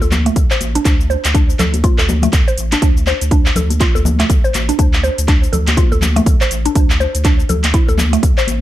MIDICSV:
0, 0, Header, 1, 4, 480
1, 0, Start_track
1, 0, Key_signature, -1, "minor"
1, 0, Tempo, 491803
1, 834, Time_signature, 4, 2, 24, 8
1, 8403, End_track
2, 0, Start_track
2, 0, Title_t, "Synth arpeggio sound"
2, 0, Program_c, 0, 84
2, 15, Note_on_c, 0, 69, 76
2, 109, Note_off_c, 0, 69, 0
2, 256, Note_on_c, 0, 57, 98
2, 309, Note_off_c, 0, 57, 0
2, 496, Note_on_c, 0, 72, 78
2, 585, Note_off_c, 0, 72, 0
2, 736, Note_on_c, 0, 62, 77
2, 789, Note_off_c, 0, 62, 0
2, 832, Note_on_c, 0, 62, 84
2, 910, Note_off_c, 0, 62, 0
2, 1073, Note_on_c, 0, 72, 78
2, 1202, Note_off_c, 0, 72, 0
2, 1314, Note_on_c, 0, 62, 82
2, 1391, Note_off_c, 0, 62, 0
2, 1555, Note_on_c, 0, 69, 77
2, 1683, Note_off_c, 0, 69, 0
2, 1794, Note_on_c, 0, 65, 87
2, 1922, Note_off_c, 0, 65, 0
2, 1937, Note_on_c, 0, 69, 77
2, 2030, Note_off_c, 0, 69, 0
2, 2177, Note_on_c, 0, 57, 100
2, 2230, Note_off_c, 0, 57, 0
2, 2418, Note_on_c, 0, 72, 74
2, 2505, Note_off_c, 0, 72, 0
2, 2660, Note_on_c, 0, 62, 76
2, 2711, Note_off_c, 0, 62, 0
2, 2758, Note_on_c, 0, 62, 84
2, 2833, Note_off_c, 0, 62, 0
2, 2998, Note_on_c, 0, 72, 76
2, 3124, Note_off_c, 0, 72, 0
2, 3238, Note_on_c, 0, 62, 85
2, 3313, Note_off_c, 0, 62, 0
2, 3477, Note_on_c, 0, 69, 77
2, 3603, Note_off_c, 0, 69, 0
2, 3716, Note_on_c, 0, 65, 84
2, 3843, Note_off_c, 0, 65, 0
2, 3856, Note_on_c, 0, 69, 80
2, 3949, Note_off_c, 0, 69, 0
2, 4096, Note_on_c, 0, 57, 98
2, 4149, Note_off_c, 0, 57, 0
2, 4337, Note_on_c, 0, 72, 76
2, 4425, Note_off_c, 0, 72, 0
2, 4576, Note_on_c, 0, 62, 79
2, 4629, Note_off_c, 0, 62, 0
2, 4674, Note_on_c, 0, 62, 85
2, 4751, Note_off_c, 0, 62, 0
2, 4914, Note_on_c, 0, 72, 79
2, 5042, Note_off_c, 0, 72, 0
2, 5155, Note_on_c, 0, 62, 88
2, 5232, Note_off_c, 0, 62, 0
2, 5393, Note_on_c, 0, 69, 79
2, 5522, Note_off_c, 0, 69, 0
2, 5634, Note_on_c, 0, 65, 84
2, 5762, Note_off_c, 0, 65, 0
2, 5776, Note_on_c, 0, 69, 75
2, 5869, Note_off_c, 0, 69, 0
2, 6015, Note_on_c, 0, 57, 104
2, 6069, Note_off_c, 0, 57, 0
2, 6257, Note_on_c, 0, 72, 80
2, 6345, Note_off_c, 0, 72, 0
2, 6496, Note_on_c, 0, 62, 77
2, 6549, Note_off_c, 0, 62, 0
2, 6594, Note_on_c, 0, 62, 83
2, 6671, Note_off_c, 0, 62, 0
2, 6835, Note_on_c, 0, 72, 82
2, 6963, Note_off_c, 0, 72, 0
2, 7074, Note_on_c, 0, 62, 85
2, 7151, Note_off_c, 0, 62, 0
2, 7314, Note_on_c, 0, 69, 79
2, 7442, Note_off_c, 0, 69, 0
2, 7554, Note_on_c, 0, 64, 85
2, 7682, Note_off_c, 0, 64, 0
2, 7696, Note_on_c, 0, 69, 79
2, 7790, Note_off_c, 0, 69, 0
2, 7936, Note_on_c, 0, 57, 102
2, 7989, Note_off_c, 0, 57, 0
2, 8175, Note_on_c, 0, 72, 77
2, 8264, Note_off_c, 0, 72, 0
2, 8403, End_track
3, 0, Start_track
3, 0, Title_t, "Sub bass"
3, 0, Program_c, 1, 38
3, 15, Note_on_c, 1, 38, 104
3, 299, Note_off_c, 1, 38, 0
3, 352, Note_on_c, 1, 38, 91
3, 446, Note_off_c, 1, 38, 0
3, 595, Note_on_c, 1, 33, 80
3, 767, Note_off_c, 1, 33, 0
3, 832, Note_on_c, 1, 38, 96
3, 1137, Note_off_c, 1, 38, 0
3, 1219, Note_on_c, 1, 38, 81
3, 1501, Note_off_c, 1, 38, 0
3, 1556, Note_on_c, 1, 38, 77
3, 1859, Note_off_c, 1, 38, 0
3, 1937, Note_on_c, 1, 38, 106
3, 2220, Note_off_c, 1, 38, 0
3, 2273, Note_on_c, 1, 38, 92
3, 2367, Note_off_c, 1, 38, 0
3, 2516, Note_on_c, 1, 33, 83
3, 2688, Note_off_c, 1, 33, 0
3, 2753, Note_on_c, 1, 38, 98
3, 3057, Note_off_c, 1, 38, 0
3, 3138, Note_on_c, 1, 38, 80
3, 3421, Note_off_c, 1, 38, 0
3, 3476, Note_on_c, 1, 38, 78
3, 3779, Note_off_c, 1, 38, 0
3, 3859, Note_on_c, 1, 38, 108
3, 4141, Note_off_c, 1, 38, 0
3, 4193, Note_on_c, 1, 38, 89
3, 4287, Note_off_c, 1, 38, 0
3, 4436, Note_on_c, 1, 33, 79
3, 4607, Note_off_c, 1, 33, 0
3, 4673, Note_on_c, 1, 38, 98
3, 4977, Note_off_c, 1, 38, 0
3, 5058, Note_on_c, 1, 38, 81
3, 5341, Note_off_c, 1, 38, 0
3, 5394, Note_on_c, 1, 38, 78
3, 5697, Note_off_c, 1, 38, 0
3, 5778, Note_on_c, 1, 38, 106
3, 6061, Note_off_c, 1, 38, 0
3, 6113, Note_on_c, 1, 38, 93
3, 6206, Note_off_c, 1, 38, 0
3, 6355, Note_on_c, 1, 33, 83
3, 6527, Note_off_c, 1, 33, 0
3, 6594, Note_on_c, 1, 38, 99
3, 6897, Note_off_c, 1, 38, 0
3, 6976, Note_on_c, 1, 38, 78
3, 7260, Note_off_c, 1, 38, 0
3, 7313, Note_on_c, 1, 38, 75
3, 7617, Note_off_c, 1, 38, 0
3, 7694, Note_on_c, 1, 38, 105
3, 7979, Note_off_c, 1, 38, 0
3, 8032, Note_on_c, 1, 38, 94
3, 8126, Note_off_c, 1, 38, 0
3, 8273, Note_on_c, 1, 33, 85
3, 8403, Note_off_c, 1, 33, 0
3, 8403, End_track
4, 0, Start_track
4, 0, Title_t, "Drums"
4, 16, Note_on_c, 9, 62, 55
4, 19, Note_on_c, 9, 82, 52
4, 110, Note_on_c, 9, 64, 98
4, 112, Note_on_c, 9, 39, 82
4, 113, Note_on_c, 9, 63, 95
4, 114, Note_off_c, 9, 62, 0
4, 117, Note_off_c, 9, 82, 0
4, 117, Note_on_c, 9, 82, 90
4, 208, Note_off_c, 9, 64, 0
4, 209, Note_off_c, 9, 39, 0
4, 211, Note_off_c, 9, 63, 0
4, 215, Note_off_c, 9, 82, 0
4, 255, Note_on_c, 9, 42, 43
4, 259, Note_on_c, 9, 63, 61
4, 260, Note_on_c, 9, 82, 51
4, 352, Note_off_c, 9, 42, 0
4, 352, Note_on_c, 9, 36, 112
4, 352, Note_on_c, 9, 42, 55
4, 353, Note_on_c, 9, 62, 42
4, 356, Note_off_c, 9, 63, 0
4, 357, Note_off_c, 9, 82, 0
4, 357, Note_on_c, 9, 82, 89
4, 450, Note_off_c, 9, 36, 0
4, 450, Note_off_c, 9, 42, 0
4, 451, Note_off_c, 9, 62, 0
4, 455, Note_off_c, 9, 82, 0
4, 495, Note_on_c, 9, 39, 94
4, 500, Note_on_c, 9, 82, 53
4, 592, Note_off_c, 9, 39, 0
4, 593, Note_on_c, 9, 42, 43
4, 593, Note_on_c, 9, 63, 61
4, 597, Note_off_c, 9, 82, 0
4, 598, Note_on_c, 9, 82, 89
4, 690, Note_off_c, 9, 63, 0
4, 691, Note_off_c, 9, 42, 0
4, 696, Note_off_c, 9, 82, 0
4, 736, Note_on_c, 9, 42, 55
4, 739, Note_on_c, 9, 62, 52
4, 741, Note_on_c, 9, 82, 53
4, 832, Note_on_c, 9, 36, 118
4, 833, Note_off_c, 9, 42, 0
4, 834, Note_on_c, 9, 39, 83
4, 834, Note_on_c, 9, 42, 55
4, 836, Note_off_c, 9, 62, 0
4, 838, Note_off_c, 9, 82, 0
4, 839, Note_on_c, 9, 82, 91
4, 930, Note_off_c, 9, 36, 0
4, 931, Note_off_c, 9, 39, 0
4, 931, Note_off_c, 9, 42, 0
4, 936, Note_off_c, 9, 82, 0
4, 982, Note_on_c, 9, 82, 52
4, 1075, Note_on_c, 9, 62, 52
4, 1079, Note_off_c, 9, 82, 0
4, 1079, Note_on_c, 9, 82, 55
4, 1173, Note_off_c, 9, 62, 0
4, 1177, Note_off_c, 9, 82, 0
4, 1216, Note_on_c, 9, 39, 95
4, 1216, Note_on_c, 9, 42, 45
4, 1221, Note_on_c, 9, 82, 99
4, 1313, Note_on_c, 9, 36, 123
4, 1314, Note_off_c, 9, 39, 0
4, 1314, Note_off_c, 9, 42, 0
4, 1315, Note_on_c, 9, 42, 55
4, 1319, Note_off_c, 9, 82, 0
4, 1320, Note_on_c, 9, 82, 56
4, 1411, Note_off_c, 9, 36, 0
4, 1412, Note_off_c, 9, 42, 0
4, 1417, Note_off_c, 9, 82, 0
4, 1462, Note_on_c, 9, 82, 55
4, 1551, Note_on_c, 9, 62, 42
4, 1554, Note_on_c, 9, 39, 82
4, 1554, Note_on_c, 9, 42, 30
4, 1558, Note_on_c, 9, 64, 120
4, 1559, Note_off_c, 9, 82, 0
4, 1559, Note_on_c, 9, 82, 91
4, 1648, Note_off_c, 9, 62, 0
4, 1652, Note_off_c, 9, 39, 0
4, 1652, Note_off_c, 9, 42, 0
4, 1656, Note_off_c, 9, 64, 0
4, 1657, Note_off_c, 9, 82, 0
4, 1696, Note_on_c, 9, 42, 41
4, 1697, Note_on_c, 9, 63, 63
4, 1701, Note_on_c, 9, 82, 54
4, 1793, Note_off_c, 9, 42, 0
4, 1793, Note_on_c, 9, 36, 121
4, 1794, Note_off_c, 9, 63, 0
4, 1794, Note_on_c, 9, 42, 52
4, 1794, Note_on_c, 9, 63, 96
4, 1799, Note_off_c, 9, 82, 0
4, 1800, Note_on_c, 9, 82, 53
4, 1891, Note_off_c, 9, 36, 0
4, 1892, Note_off_c, 9, 42, 0
4, 1892, Note_off_c, 9, 63, 0
4, 1897, Note_off_c, 9, 82, 0
4, 1937, Note_on_c, 9, 39, 98
4, 1942, Note_on_c, 9, 82, 55
4, 1944, Note_on_c, 9, 62, 56
4, 2035, Note_off_c, 9, 39, 0
4, 2038, Note_on_c, 9, 63, 113
4, 2039, Note_off_c, 9, 82, 0
4, 2039, Note_on_c, 9, 82, 94
4, 2040, Note_on_c, 9, 64, 96
4, 2042, Note_off_c, 9, 62, 0
4, 2136, Note_off_c, 9, 63, 0
4, 2137, Note_off_c, 9, 64, 0
4, 2137, Note_off_c, 9, 82, 0
4, 2169, Note_on_c, 9, 63, 64
4, 2173, Note_on_c, 9, 64, 82
4, 2176, Note_on_c, 9, 42, 41
4, 2182, Note_on_c, 9, 82, 52
4, 2266, Note_off_c, 9, 63, 0
4, 2271, Note_off_c, 9, 64, 0
4, 2272, Note_on_c, 9, 62, 41
4, 2273, Note_off_c, 9, 42, 0
4, 2273, Note_on_c, 9, 36, 121
4, 2273, Note_on_c, 9, 39, 80
4, 2273, Note_on_c, 9, 42, 51
4, 2278, Note_off_c, 9, 82, 0
4, 2278, Note_on_c, 9, 82, 90
4, 2370, Note_off_c, 9, 36, 0
4, 2370, Note_off_c, 9, 39, 0
4, 2370, Note_off_c, 9, 42, 0
4, 2370, Note_off_c, 9, 62, 0
4, 2376, Note_off_c, 9, 82, 0
4, 2420, Note_on_c, 9, 82, 53
4, 2514, Note_on_c, 9, 42, 41
4, 2518, Note_off_c, 9, 82, 0
4, 2519, Note_on_c, 9, 82, 91
4, 2611, Note_off_c, 9, 42, 0
4, 2616, Note_off_c, 9, 82, 0
4, 2656, Note_on_c, 9, 39, 102
4, 2656, Note_on_c, 9, 42, 51
4, 2657, Note_on_c, 9, 62, 54
4, 2661, Note_on_c, 9, 82, 56
4, 2753, Note_on_c, 9, 36, 121
4, 2754, Note_off_c, 9, 39, 0
4, 2754, Note_off_c, 9, 42, 0
4, 2754, Note_on_c, 9, 42, 52
4, 2755, Note_off_c, 9, 62, 0
4, 2759, Note_off_c, 9, 82, 0
4, 2759, Note_on_c, 9, 82, 95
4, 2850, Note_off_c, 9, 36, 0
4, 2851, Note_off_c, 9, 42, 0
4, 2857, Note_off_c, 9, 82, 0
4, 2901, Note_on_c, 9, 82, 52
4, 2992, Note_on_c, 9, 62, 51
4, 2994, Note_on_c, 9, 39, 80
4, 2999, Note_off_c, 9, 82, 0
4, 2999, Note_on_c, 9, 82, 54
4, 3090, Note_off_c, 9, 62, 0
4, 3092, Note_off_c, 9, 39, 0
4, 3097, Note_off_c, 9, 82, 0
4, 3137, Note_on_c, 9, 42, 43
4, 3143, Note_on_c, 9, 82, 94
4, 3233, Note_on_c, 9, 36, 124
4, 3234, Note_off_c, 9, 42, 0
4, 3234, Note_on_c, 9, 42, 54
4, 3239, Note_off_c, 9, 82, 0
4, 3239, Note_on_c, 9, 82, 59
4, 3330, Note_off_c, 9, 36, 0
4, 3331, Note_off_c, 9, 42, 0
4, 3337, Note_off_c, 9, 82, 0
4, 3376, Note_on_c, 9, 39, 90
4, 3381, Note_on_c, 9, 82, 56
4, 3471, Note_on_c, 9, 64, 115
4, 3474, Note_off_c, 9, 39, 0
4, 3474, Note_on_c, 9, 42, 28
4, 3474, Note_on_c, 9, 62, 40
4, 3479, Note_off_c, 9, 82, 0
4, 3479, Note_on_c, 9, 82, 96
4, 3569, Note_off_c, 9, 64, 0
4, 3571, Note_off_c, 9, 42, 0
4, 3571, Note_off_c, 9, 62, 0
4, 3576, Note_off_c, 9, 82, 0
4, 3614, Note_on_c, 9, 63, 66
4, 3616, Note_on_c, 9, 42, 42
4, 3621, Note_on_c, 9, 82, 55
4, 3711, Note_off_c, 9, 63, 0
4, 3713, Note_on_c, 9, 36, 120
4, 3714, Note_off_c, 9, 42, 0
4, 3715, Note_on_c, 9, 39, 80
4, 3715, Note_on_c, 9, 42, 53
4, 3719, Note_off_c, 9, 82, 0
4, 3720, Note_on_c, 9, 82, 53
4, 3811, Note_off_c, 9, 36, 0
4, 3812, Note_off_c, 9, 39, 0
4, 3812, Note_off_c, 9, 42, 0
4, 3817, Note_off_c, 9, 82, 0
4, 3861, Note_on_c, 9, 62, 53
4, 3863, Note_on_c, 9, 82, 56
4, 3955, Note_on_c, 9, 63, 111
4, 3955, Note_on_c, 9, 64, 94
4, 3959, Note_off_c, 9, 62, 0
4, 3960, Note_off_c, 9, 82, 0
4, 3960, Note_on_c, 9, 82, 97
4, 4052, Note_off_c, 9, 63, 0
4, 4052, Note_off_c, 9, 64, 0
4, 4058, Note_off_c, 9, 82, 0
4, 4094, Note_on_c, 9, 63, 67
4, 4097, Note_on_c, 9, 39, 89
4, 4097, Note_on_c, 9, 42, 42
4, 4102, Note_on_c, 9, 82, 53
4, 4191, Note_off_c, 9, 63, 0
4, 4193, Note_off_c, 9, 42, 0
4, 4193, Note_on_c, 9, 36, 120
4, 4193, Note_on_c, 9, 42, 51
4, 4194, Note_off_c, 9, 39, 0
4, 4198, Note_off_c, 9, 82, 0
4, 4198, Note_on_c, 9, 82, 97
4, 4291, Note_off_c, 9, 36, 0
4, 4291, Note_off_c, 9, 42, 0
4, 4296, Note_off_c, 9, 82, 0
4, 4340, Note_on_c, 9, 82, 56
4, 4434, Note_on_c, 9, 39, 77
4, 4434, Note_on_c, 9, 42, 41
4, 4437, Note_off_c, 9, 82, 0
4, 4439, Note_on_c, 9, 82, 92
4, 4442, Note_on_c, 9, 63, 67
4, 4531, Note_off_c, 9, 39, 0
4, 4531, Note_off_c, 9, 42, 0
4, 4536, Note_off_c, 9, 82, 0
4, 4540, Note_off_c, 9, 63, 0
4, 4577, Note_on_c, 9, 42, 50
4, 4580, Note_on_c, 9, 62, 51
4, 4582, Note_on_c, 9, 82, 56
4, 4673, Note_on_c, 9, 36, 125
4, 4674, Note_off_c, 9, 42, 0
4, 4674, Note_on_c, 9, 42, 52
4, 4678, Note_off_c, 9, 62, 0
4, 4680, Note_off_c, 9, 82, 0
4, 4680, Note_on_c, 9, 82, 90
4, 4771, Note_off_c, 9, 36, 0
4, 4772, Note_off_c, 9, 42, 0
4, 4777, Note_off_c, 9, 82, 0
4, 4817, Note_on_c, 9, 39, 87
4, 4822, Note_on_c, 9, 82, 54
4, 4914, Note_off_c, 9, 39, 0
4, 4915, Note_on_c, 9, 62, 51
4, 4919, Note_off_c, 9, 82, 0
4, 4921, Note_on_c, 9, 82, 55
4, 5013, Note_off_c, 9, 62, 0
4, 5018, Note_off_c, 9, 82, 0
4, 5059, Note_on_c, 9, 42, 44
4, 5064, Note_on_c, 9, 82, 95
4, 5153, Note_on_c, 9, 36, 121
4, 5156, Note_off_c, 9, 42, 0
4, 5156, Note_on_c, 9, 39, 83
4, 5156, Note_on_c, 9, 42, 56
4, 5161, Note_off_c, 9, 82, 0
4, 5161, Note_on_c, 9, 82, 55
4, 5251, Note_off_c, 9, 36, 0
4, 5254, Note_off_c, 9, 39, 0
4, 5254, Note_off_c, 9, 42, 0
4, 5259, Note_off_c, 9, 82, 0
4, 5304, Note_on_c, 9, 82, 53
4, 5395, Note_on_c, 9, 62, 36
4, 5397, Note_on_c, 9, 42, 30
4, 5398, Note_on_c, 9, 64, 96
4, 5402, Note_off_c, 9, 82, 0
4, 5402, Note_on_c, 9, 82, 98
4, 5492, Note_off_c, 9, 62, 0
4, 5494, Note_off_c, 9, 42, 0
4, 5496, Note_off_c, 9, 64, 0
4, 5499, Note_off_c, 9, 82, 0
4, 5538, Note_on_c, 9, 39, 90
4, 5538, Note_on_c, 9, 42, 42
4, 5543, Note_on_c, 9, 63, 64
4, 5543, Note_on_c, 9, 82, 56
4, 5633, Note_on_c, 9, 36, 118
4, 5636, Note_off_c, 9, 39, 0
4, 5636, Note_off_c, 9, 42, 0
4, 5636, Note_off_c, 9, 63, 0
4, 5636, Note_on_c, 9, 42, 53
4, 5636, Note_on_c, 9, 63, 110
4, 5641, Note_off_c, 9, 82, 0
4, 5641, Note_on_c, 9, 82, 55
4, 5731, Note_off_c, 9, 36, 0
4, 5734, Note_off_c, 9, 42, 0
4, 5734, Note_off_c, 9, 63, 0
4, 5739, Note_off_c, 9, 82, 0
4, 5777, Note_on_c, 9, 62, 49
4, 5781, Note_on_c, 9, 82, 54
4, 5871, Note_on_c, 9, 64, 88
4, 5875, Note_off_c, 9, 62, 0
4, 5875, Note_on_c, 9, 39, 77
4, 5877, Note_on_c, 9, 63, 98
4, 5879, Note_off_c, 9, 82, 0
4, 5881, Note_on_c, 9, 82, 97
4, 5969, Note_off_c, 9, 64, 0
4, 5973, Note_off_c, 9, 39, 0
4, 5974, Note_off_c, 9, 63, 0
4, 5978, Note_off_c, 9, 82, 0
4, 6010, Note_on_c, 9, 64, 81
4, 6015, Note_on_c, 9, 63, 66
4, 6017, Note_on_c, 9, 42, 42
4, 6022, Note_on_c, 9, 82, 52
4, 6108, Note_off_c, 9, 64, 0
4, 6111, Note_on_c, 9, 62, 36
4, 6113, Note_off_c, 9, 63, 0
4, 6113, Note_on_c, 9, 36, 118
4, 6114, Note_off_c, 9, 42, 0
4, 6114, Note_on_c, 9, 42, 53
4, 6119, Note_off_c, 9, 82, 0
4, 6119, Note_on_c, 9, 82, 95
4, 6208, Note_off_c, 9, 62, 0
4, 6211, Note_off_c, 9, 36, 0
4, 6212, Note_off_c, 9, 42, 0
4, 6217, Note_off_c, 9, 82, 0
4, 6256, Note_on_c, 9, 39, 91
4, 6261, Note_on_c, 9, 82, 56
4, 6353, Note_off_c, 9, 39, 0
4, 6353, Note_on_c, 9, 42, 41
4, 6358, Note_off_c, 9, 82, 0
4, 6358, Note_on_c, 9, 82, 95
4, 6451, Note_off_c, 9, 42, 0
4, 6456, Note_off_c, 9, 82, 0
4, 6495, Note_on_c, 9, 42, 51
4, 6496, Note_on_c, 9, 62, 45
4, 6501, Note_on_c, 9, 82, 55
4, 6592, Note_off_c, 9, 42, 0
4, 6592, Note_on_c, 9, 42, 53
4, 6593, Note_on_c, 9, 36, 119
4, 6594, Note_off_c, 9, 62, 0
4, 6598, Note_off_c, 9, 82, 0
4, 6598, Note_on_c, 9, 82, 87
4, 6690, Note_off_c, 9, 36, 0
4, 6690, Note_off_c, 9, 42, 0
4, 6695, Note_off_c, 9, 82, 0
4, 6736, Note_on_c, 9, 39, 87
4, 6741, Note_on_c, 9, 82, 50
4, 6833, Note_off_c, 9, 39, 0
4, 6838, Note_off_c, 9, 82, 0
4, 6838, Note_on_c, 9, 62, 45
4, 6838, Note_on_c, 9, 82, 51
4, 6936, Note_off_c, 9, 62, 0
4, 6936, Note_off_c, 9, 82, 0
4, 6976, Note_on_c, 9, 42, 45
4, 6981, Note_on_c, 9, 82, 91
4, 7072, Note_off_c, 9, 42, 0
4, 7072, Note_on_c, 9, 36, 114
4, 7072, Note_on_c, 9, 39, 77
4, 7072, Note_on_c, 9, 42, 58
4, 7077, Note_off_c, 9, 82, 0
4, 7077, Note_on_c, 9, 82, 54
4, 7170, Note_off_c, 9, 36, 0
4, 7170, Note_off_c, 9, 39, 0
4, 7170, Note_off_c, 9, 42, 0
4, 7175, Note_off_c, 9, 82, 0
4, 7218, Note_on_c, 9, 82, 50
4, 7312, Note_on_c, 9, 42, 30
4, 7315, Note_on_c, 9, 62, 37
4, 7316, Note_off_c, 9, 82, 0
4, 7317, Note_on_c, 9, 64, 92
4, 7317, Note_on_c, 9, 82, 93
4, 7410, Note_off_c, 9, 42, 0
4, 7413, Note_off_c, 9, 62, 0
4, 7415, Note_off_c, 9, 64, 0
4, 7415, Note_off_c, 9, 82, 0
4, 7455, Note_on_c, 9, 39, 88
4, 7455, Note_on_c, 9, 42, 46
4, 7456, Note_on_c, 9, 63, 60
4, 7460, Note_on_c, 9, 82, 50
4, 7552, Note_off_c, 9, 39, 0
4, 7552, Note_off_c, 9, 42, 0
4, 7552, Note_on_c, 9, 36, 122
4, 7553, Note_off_c, 9, 63, 0
4, 7553, Note_on_c, 9, 42, 56
4, 7558, Note_off_c, 9, 82, 0
4, 7558, Note_on_c, 9, 82, 52
4, 7650, Note_off_c, 9, 36, 0
4, 7650, Note_off_c, 9, 42, 0
4, 7656, Note_off_c, 9, 82, 0
4, 7695, Note_on_c, 9, 62, 51
4, 7700, Note_on_c, 9, 82, 53
4, 7786, Note_on_c, 9, 63, 106
4, 7790, Note_on_c, 9, 64, 80
4, 7793, Note_off_c, 9, 62, 0
4, 7794, Note_on_c, 9, 39, 75
4, 7798, Note_off_c, 9, 82, 0
4, 7799, Note_on_c, 9, 82, 94
4, 7884, Note_off_c, 9, 63, 0
4, 7887, Note_off_c, 9, 64, 0
4, 7891, Note_off_c, 9, 39, 0
4, 7896, Note_off_c, 9, 82, 0
4, 7937, Note_on_c, 9, 42, 44
4, 7937, Note_on_c, 9, 63, 65
4, 7942, Note_on_c, 9, 82, 52
4, 8032, Note_on_c, 9, 36, 118
4, 8033, Note_off_c, 9, 42, 0
4, 8033, Note_on_c, 9, 42, 58
4, 8033, Note_on_c, 9, 62, 39
4, 8034, Note_off_c, 9, 63, 0
4, 8038, Note_off_c, 9, 82, 0
4, 8038, Note_on_c, 9, 82, 93
4, 8129, Note_off_c, 9, 36, 0
4, 8130, Note_off_c, 9, 62, 0
4, 8131, Note_off_c, 9, 42, 0
4, 8136, Note_off_c, 9, 82, 0
4, 8177, Note_on_c, 9, 39, 88
4, 8182, Note_on_c, 9, 82, 51
4, 8270, Note_on_c, 9, 63, 66
4, 8274, Note_off_c, 9, 39, 0
4, 8275, Note_on_c, 9, 42, 45
4, 8280, Note_off_c, 9, 82, 0
4, 8280, Note_on_c, 9, 82, 91
4, 8368, Note_off_c, 9, 63, 0
4, 8373, Note_off_c, 9, 42, 0
4, 8378, Note_off_c, 9, 82, 0
4, 8403, End_track
0, 0, End_of_file